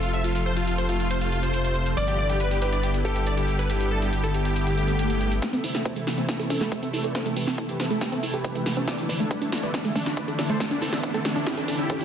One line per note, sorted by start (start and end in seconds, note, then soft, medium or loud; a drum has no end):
0.00 1.95 F1 medium
0.00 0.18 C3 medium
0.00 0.18 F3 medium
0.00 0.18 A3 medium
0.00 0.11 F4 medium
0.00 0.18 F4 medium
0.00 1.88 A4 medium
0.00 closed hi-hat soft
0.13 0.22 E5 medium
0.13 closed hi-hat soft
0.24 0.39 C3 medium
0.24 0.39 F3 medium
0.24 0.39 A3 medium
0.24 0.33 F4 medium
0.24 0.39 F4 medium
0.24 closed hi-hat medium
0.35 0.43 F4 medium
0.35 closed hi-hat soft
0.46 0.61 C3 medium
0.46 0.61 F3 medium
0.46 0.61 A3 medium
0.46 0.61 F4 medium
0.46 0.54 C5 medium
0.57 0.65 F4 medium
0.57 closed hi-hat soft
0.67 0.83 C3 medium
0.67 0.83 F3 medium
0.67 0.83 A3 medium
0.67 0.76 F4 medium
0.67 0.83 F4 medium
0.67 closed hi-hat medium
0.78 0.87 C5 medium
0.78 closed hi-hat soft
0.89 1.04 C3 medium
0.89 1.04 F3 medium
0.89 1.04 A3 medium
0.89 1.04 F4 medium
0.89 0.97 F4 medium
0.89 closed hi-hat medium
1.00 1.08 F4 medium
1.00 closed hi-hat soft
1.11 1.26 C3 medium
1.11 1.26 F3 medium
1.11 1.26 A3 medium
1.11 1.26 F4 medium
1.11 1.19 C5 medium
1.11 closed hi-hat medium
1.21 1.30 F4 medium
1.21 closed hi-hat soft
1.32 1.47 C3 medium
1.32 1.47 F3 medium
1.32 1.47 A3 medium
1.32 1.41 F4 medium
1.32 1.47 F4 medium
1.32 closed hi-hat soft
1.43 1.88 C5 loud
1.43 closed hi-hat soft
1.54 1.69 C3 medium
1.54 1.69 F3 medium
1.54 1.69 A3 medium
1.54 1.69 F4 medium
1.54 closed hi-hat medium
1.65 closed hi-hat soft
1.75 1.91 C3 medium
1.75 1.91 F3 medium
1.75 1.91 A3 medium
1.75 1.91 F4 medium
1.75 closed hi-hat soft
1.86 closed hi-hat soft
1.97 5.40 G1 medium
1.97 2.12 D3 medium
1.97 2.12 G3 medium
1.97 2.12 B3 medium
1.97 2.12 E4 medium
1.97 2.53 D5 medium
1.97 2.05 D5 loud
1.97 closed hi-hat medium
2.08 2.16 G4 medium
2.08 closed hi-hat soft
2.19 2.34 D3 medium
2.19 2.34 G3 medium
2.19 2.34 B3 medium
2.19 2.34 E4 medium
2.19 2.27 D5 medium
2.29 2.38 G4 medium
2.29 closed hi-hat medium
2.40 2.55 D3 medium
2.40 2.55 G3 medium
2.40 2.55 B3 medium
2.40 2.55 E4 medium
2.40 2.48 B4 medium
2.40 closed hi-hat medium
2.51 2.59 G4 medium
2.51 closed hi-hat medium
2.62 2.77 D3 medium
2.62 2.77 G3 medium
2.62 2.77 B3 medium
2.62 2.77 E4 medium
2.62 2.70 G4 medium
2.62 3.03 B4 medium
2.62 closed hi-hat medium
2.73 2.81 D5 medium
2.73 closed hi-hat soft
2.83 2.98 D3 medium
2.83 2.98 G3 medium
2.83 2.98 B3 medium
2.83 2.98 E4 medium
2.83 2.92 G4 medium
2.83 closed hi-hat medium
2.94 closed hi-hat soft
3.05 3.20 D3 medium
3.05 3.20 G3 medium
3.05 3.20 B3 medium
3.05 3.20 E4 medium
3.05 3.13 G4 medium
3.05 5.34 A4 medium
3.05 closed hi-hat soft
3.16 3.24 G4 medium
3.16 closed hi-hat soft
3.26 3.42 D3 medium
3.26 3.42 G3 medium
3.26 3.42 B3 medium
3.26 3.42 E4 medium
3.26 3.35 D5 medium
3.26 closed hi-hat medium
3.37 3.46 G4 medium
3.37 closed hi-hat soft
3.48 3.63 D3 medium
3.48 3.63 G3 medium
3.48 3.63 B3 medium
3.48 3.63 E4 medium
3.48 3.56 G4 medium
3.48 closed hi-hat soft
3.59 3.67 B4 medium
3.59 closed hi-hat medium
3.70 3.85 D3 medium
3.70 3.85 G3 medium
3.70 3.85 B3 medium
3.70 3.85 E4 medium
3.70 3.78 G4 medium
3.70 closed hi-hat medium
3.80 3.89 G4 medium
3.80 closed hi-hat medium
3.91 4.06 D3 medium
3.91 4.06 G3 medium
3.91 4.06 B3 medium
3.91 4.06 E4 medium
3.91 4.00 A4 medium
4.02 4.10 G4 medium
4.02 closed hi-hat medium
4.13 4.28 D3 medium
4.13 4.28 G3 medium
4.13 4.28 B3 medium
4.13 4.28 E4 medium
4.13 4.21 G4 medium
4.13 closed hi-hat medium
4.24 4.32 A4 medium
4.24 closed hi-hat medium
4.34 4.50 D3 medium
4.34 4.50 G3 medium
4.34 4.50 B3 medium
4.34 4.50 E4 medium
4.34 4.43 G4 medium
4.34 closed hi-hat medium
4.45 4.53 G4 medium
4.45 closed hi-hat soft
4.56 4.71 D3 medium
4.56 4.71 G3 medium
4.56 4.71 B3 medium
4.56 4.71 E4 medium
4.56 4.64 G4 medium
4.56 closed hi-hat medium
4.56 swell medium
4.67 4.75 G4 medium
4.67 closed hi-hat soft
4.77 4.93 D3 medium
4.77 4.93 G3 medium
4.77 4.93 B3 medium
4.77 4.93 E4 medium
4.77 4.86 G4 medium
4.77 closed hi-hat soft
4.88 5.34 G4 medium
4.88 closed hi-hat soft
4.99 5.14 D3 medium
4.99 5.14 G3 medium
4.99 5.14 B3 medium
4.99 5.14 E4 medium
4.99 closed hi-hat medium
5.10 closed hi-hat soft
5.21 5.36 D3 medium
5.21 5.36 G3 medium
5.21 5.36 B3 medium
5.21 5.36 E4 medium
5.21 closed hi-hat soft
5.32 closed hi-hat soft
5.42 5.58 C3 medium
5.42 5.57 E3 medium
5.42 5.50 A3 medium
5.42 5.57 A3 medium
5.42 5.58 E4 medium
5.42 5.51 C5 medium
5.42 5.51 E5 loud
5.42 kick loud
5.42 snare soft
5.42 closed hi-hat medium
5.42 riser medium
5.42 shaker soft
5.53 5.63 C4 loud
5.53 5.61 A4 medium
5.53 closed hi-hat medium
5.53 shaker soft
5.64 5.79 C3 medium
5.64 5.79 E3 medium
5.64 5.79 A3 medium
5.64 5.71 E4 medium
5.64 5.79 E4 medium
5.64 5.72 C5 medium
5.64 5.72 E5 medium
5.64 open hi-hat medium
5.64 shaker medium
5.74 5.79 A4 medium
5.74 5.83 A4 medium
5.74 snare soft
5.74 closed hi-hat medium
5.74 shaker soft
5.85 6.01 C3 medium
5.85 6.01 E3 medium
5.85 6.01 A3 medium
5.85 6.01 E4 medium
5.85 5.94 A4 medium
5.85 5.94 C5 medium
5.85 5.90 C5 medium
5.85 kick loud
5.85 closed hi-hat medium
5.85 shaker soft
5.96 6.01 A3 medium
5.96 6.05 A4 medium
5.96 closed hi-hat medium
5.96 shaker soft
6.07 6.22 C3 medium
6.07 6.22 E3 medium
6.07 6.15 A3 medium
6.07 6.22 A3 medium
6.07 6.22 E4 medium
6.07 6.15 A4 medium
6.07 snare soft
6.07 open hi-hat loud
6.07 shaker medium
6.13 closed hi-hat medium
6.18 6.28 C4 medium
6.18 6.26 C5 medium
6.18 6.26 E5 medium
6.18 closed hi-hat medium
6.18 shaker soft
6.29 6.44 C3 medium
6.29 6.44 E3 medium
6.29 6.44 A3 medium
6.29 6.36 E4 medium
6.29 6.44 E4 medium
6.29 6.37 A4 medium
6.29 kick loud
6.29 snare soft
6.29 closed hi-hat medium
6.29 shaker soft
6.39 6.44 A4 medium
6.39 closed hi-hat medium
6.39 shaker soft
6.50 6.65 C3 medium
6.50 6.65 E3 medium
6.50 6.65 A3 medium
6.50 6.65 E4 medium
6.50 6.59 A4 medium
6.50 6.55 C5 medium
6.50 kick medium
6.50 open hi-hat medium
6.50 high conga medium
6.50 shaker medium
6.61 6.66 A3 medium
6.61 6.69 A4 medium
6.61 snare soft
6.61 closed hi-hat medium
6.61 shaker soft
6.72 6.87 C3 medium
6.72 6.87 E3 medium
6.72 6.79 A3 medium
6.72 6.87 A3 medium
6.72 6.87 E4 medium
6.72 6.80 C5 medium
6.72 6.80 E5 medium
6.72 kick loud
6.72 closed hi-hat medium
6.72 shaker soft
6.83 6.93 C4 loud
6.83 6.91 A4 medium
6.83 closed hi-hat soft
6.83 shaker soft
6.93 7.09 C3 medium
6.93 7.09 E3 medium
6.93 7.09 A3 medium
6.93 7.01 E4 medium
6.93 7.09 E4 medium
6.93 7.02 A4 medium
6.93 open hi-hat medium
6.93 shaker medium
7.04 7.09 A4 medium
7.04 7.12 B4 medium
7.04 7.12 D5 medium
7.04 closed hi-hat soft
7.04 shaker soft
7.15 7.30 C3 medium
7.15 7.30 E3 medium
7.15 7.30 A3 medium
7.15 7.30 E4 medium
7.15 7.23 A4 medium
7.15 7.20 C5 medium
7.15 kick loud
7.15 snare soft
7.15 closed hi-hat medium
7.15 shaker soft
7.26 7.30 A3 loud
7.26 7.34 A4 medium
7.26 closed hi-hat medium
7.26 shaker soft
7.37 7.52 C3 medium
7.37 7.52 E3 medium
7.37 7.44 A3 medium
7.37 7.52 A3 medium
7.37 7.52 E4 medium
7.37 7.45 G4 medium
7.37 7.45 B4 medium
7.37 open hi-hat loud
7.37 shaker loud
7.47 7.58 C4 loud
7.47 7.56 A4 medium
7.47 snare soft
7.47 open hi-hat medium
7.47 shaker soft
7.58 7.73 C3 medium
7.58 7.73 E3 medium
7.58 7.73 A3 medium
7.58 7.66 E4 medium
7.58 7.73 E4 medium
7.58 7.66 A4 medium
7.58 kick loud
7.58 closed hi-hat medium
7.58 shaker medium
7.68 7.77 G4 medium
7.68 7.73 A4 medium
7.68 7.77 B4 medium
7.68 closed hi-hat medium
7.68 shaker soft
7.80 7.95 C3 medium
7.80 7.95 E3 medium
7.80 7.95 A3 medium
7.80 7.95 E4 medium
7.80 7.88 A4 medium
7.80 7.84 C5 medium
7.80 snare medium
7.80 open hi-hat loud
7.80 shaker medium
7.85 closed hi-hat medium
7.90 7.95 A3 medium
7.90 7.99 A4 medium
7.90 closed hi-hat soft
7.90 shaker soft
8.01 8.17 C3 medium
8.01 8.17 E3 medium
8.01 8.09 A3 medium
8.01 8.17 A3 medium
8.01 8.16 E4 medium
8.01 8.10 G4 medium
8.01 8.10 B4 medium
8.01 kick loud
8.01 snare medium
8.01 closed hi-hat medium
8.01 shaker soft
8.12 8.22 C4 loud
8.12 8.20 A4 medium
8.12 closed hi-hat soft
8.12 shaker soft
8.23 8.38 C3 medium
8.23 8.38 E3 medium
8.23 8.38 A3 medium
8.23 8.30 E4 medium
8.23 8.38 E4 medium
8.23 8.31 A4 medium
8.23 open hi-hat loud
8.23 shaker medium
8.33 8.79 G4 medium
8.33 8.38 A4 medium
8.33 8.79 B4 loud
8.33 closed hi-hat medium
8.33 shaker soft
8.44 8.60 C3 medium
8.44 8.60 E3 medium
8.44 8.60 A3 medium
8.44 8.60 E4 medium
8.44 8.49 C5 medium
8.44 kick loud
8.44 closed hi-hat medium
8.44 shaker soft
8.54 8.60 A3 loud
8.54 closed hi-hat soft
8.54 shaker soft
8.66 8.81 C3 medium
8.66 8.81 E3 medium
8.66 8.74 A3 medium
8.66 8.81 A3 medium
8.66 8.81 E4 medium
8.66 snare medium
8.66 open hi-hat loud
8.66 shaker medium
8.77 8.87 C4 loud
8.77 closed hi-hat soft
8.77 high conga medium
8.77 shaker soft
8.88 9.03 D3 medium
8.88 9.03 E3 medium
8.88 9.03 A3 medium
8.88 8.95 E4 medium
8.88 9.03 E4 medium
8.88 8.96 B4 medium
8.88 8.96 D5 loud
8.88 kick loud
8.88 snare medium
8.88 closed hi-hat medium
8.88 shaker medium
8.98 9.07 D4 medium
8.98 9.03 A4 medium
8.98 closed hi-hat medium
8.98 shaker soft
9.09 9.24 D3 medium
9.09 9.24 E3 medium
9.09 9.24 A3 medium
9.09 9.24 E4 medium
9.09 9.17 B4 medium
9.09 9.17 D5 medium
9.09 9.14 D5 medium
9.09 open hi-hat loud
9.09 shaker loud
9.20 9.25 A3 loud
9.20 9.28 D4 medium
9.20 closed hi-hat medium
9.20 shaker soft
9.31 9.46 D3 medium
9.31 9.46 E3 medium
9.31 9.38 A3 medium
9.31 9.46 A3 medium
9.31 9.39 D4 medium
9.31 9.46 E4 medium
9.31 9.39 B4 medium
9.31 kick loud
9.31 closed hi-hat medium
9.31 shaker medium
9.41 9.50 D4 medium
9.41 9.52 D4 loud
9.41 closed hi-hat medium
9.41 shaker soft
9.52 9.68 D3 medium
9.52 9.67 E3 medium
9.52 9.68 A3 medium
9.52 9.61 D4 medium
9.52 9.60 E4 medium
9.52 9.68 E4 medium
9.52 snare medium
9.52 open hi-hat loud
9.52 shaker medium
9.58 closed hi-hat medium
9.63 9.68 A4 medium
9.63 9.72 B4 medium
9.63 9.71 D5 medium
9.63 closed hi-hat soft
9.63 shaker soft
9.74 9.89 D3 medium
9.74 9.89 E3 medium
9.74 9.89 A3 medium
9.74 9.82 D4 medium
9.74 9.89 E4 medium
9.74 9.78 D5 medium
9.74 kick loud
9.74 snare medium
9.74 closed hi-hat medium
9.74 shaker medium
9.84 9.89 A3 loud
9.84 closed hi-hat soft
9.84 shaker soft
9.96 10.11 D3 medium
9.96 10.11 E3 medium
9.96 10.03 A3 medium
9.96 10.11 A3 medium
9.96 10.04 D4 medium
9.96 10.11 E4 medium
9.96 kick medium
9.96 open hi-hat loud
9.96 high conga medium
9.96 shaker medium
10.06 10.15 D4 medium
10.06 10.17 D4 loud
10.06 snare medium
10.06 closed hi-hat medium
10.06 shaker soft
10.16 10.32 D3 medium
10.16 10.32 E3 medium
10.16 10.32 A3 medium
10.16 10.32 E4 medium
10.16 10.25 E4 medium
10.16 10.25 B4 medium
10.16 10.25 D5 medium
10.16 kick loud
10.16 closed hi-hat medium
10.16 shaker medium
10.28 10.36 D4 medium
10.28 10.32 A4 medium
10.28 closed hi-hat soft
10.28 shaker soft
10.39 10.54 D3 medium
10.39 10.54 E3 medium
10.39 10.54 A3 medium
10.39 10.47 D4 medium
10.39 10.54 E4 medium
10.39 10.43 D5 medium
10.39 snare medium
10.39 open hi-hat loud
10.39 shaker loud
10.49 10.54 A3 loud
10.49 10.58 A4 medium
10.49 10.58 C5 medium
10.49 closed hi-hat soft
10.49 shaker soft
10.60 10.75 D3 medium
10.60 10.75 E3 medium
10.60 10.68 A3 medium
10.60 10.75 A3 medium
10.60 10.69 D4 medium
10.60 10.75 E4 medium
10.60 kick loud
10.60 snare medium
10.60 closed hi-hat medium
10.60 shaker soft
10.71 10.81 D4 loud
10.71 10.79 D4 medium
10.71 closed hi-hat soft
10.71 shaker soft
10.81 10.97 D3 medium
10.81 10.97 E3 medium
10.81 10.97 A3 medium
10.81 10.90 C4 medium
10.81 10.89 E4 medium
10.81 10.97 E4 medium
10.81 10.90 A4 loud
10.81 open hi-hat loud
10.81 shaker medium
10.93 11.01 D4 medium
10.93 10.97 A4 medium
10.93 snare medium
10.93 open hi-hat medium
10.93 shaker soft
11.03 11.19 D3 medium
11.03 11.19 E3 medium
11.03 11.19 A3 medium
11.03 11.12 D4 medium
11.03 11.19 E4 medium
11.03 11.08 D5 medium
11.03 kick loud
11.03 closed hi-hat medium
11.03 shaker medium
11.14 11.19 A3 medium
11.14 11.23 C4 medium
11.14 11.23 A4 medium
11.14 closed hi-hat medium
11.14 shaker soft
11.25 11.40 D3 medium
11.25 11.40 E3 medium
11.25 11.33 A3 medium
11.25 11.40 A3 medium
11.25 11.33 D4 medium
11.25 11.40 E4 medium
11.25 snare medium
11.25 open hi-hat loud
11.25 shaker medium
11.30 closed hi-hat medium
11.36 11.46 D4 loud
11.36 11.44 D4 medium
11.36 closed hi-hat soft
11.36 shaker soft
11.47 11.62 D3 medium
11.47 11.62 E3 medium
11.47 11.62 A3 medium
11.47 11.54 E4 medium
11.47 11.62 E4 medium
11.47 11.55 E4 medium
11.47 11.55 G4 medium
11.47 kick loud
11.47 snare medium
11.47 closed hi-hat medium
11.47 shaker medium
11.57 11.66 D4 medium
11.57 11.62 A4 medium
11.57 closed hi-hat soft
11.57 shaker soft
11.68 11.83 D3 medium
11.68 11.83 E3 medium
11.68 11.83 A3 medium
11.68 11.76 D4 medium
11.68 11.83 E4 medium
11.68 11.78 A4 medium
11.68 open hi-hat loud
11.68 high conga medium
11.68 shaker loud
11.79 11.87 D4 medium
11.79 12.05 E4 medium
11.79 12.05 G4 loud
11.79 closed hi-hat soft
11.79 shaker soft
11.90 12.05 D3 medium
11.90 12.05 E3 medium
11.90 12.05 A3 medium
11.90 12.05 E4 medium
11.90 11.97 A4 loud
11.90 kick loud
11.90 closed hi-hat medium
11.90 shaker medium
12.01 12.05 E4 medium
12.01 closed hi-hat soft
12.01 shaker soft